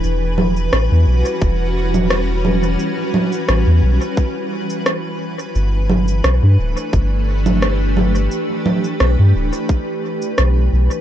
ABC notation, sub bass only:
X:1
M:4/4
L:1/16
Q:"Swing 16ths" 1/4=87
K:Edor
V:1 name="Sub bass" clef=bass
E,,,4 A,,, E,, B,,, z E,,,8 | z4 A,,, E,, B,,, z8 z | G,,,4 B,,, G,, D,,, z G,,,8 | z4 B,,, G,, D,,, z4 z B,,,2 B,,, z |]